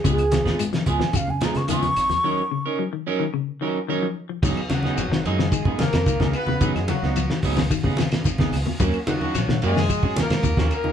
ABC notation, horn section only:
X:1
M:4/4
L:1/16
Q:1/4=110
K:Dbmix
V:1 name="Horn section"
z16 | z16 | z2 [G,G]4 [A,A]4 [B,B]4 [Cc]2- | [Cc] [A,A] [G,G]4 z8 z2 |
z2 [G,G]4 [A,A]4 [B,B]4 [B,B]2 |]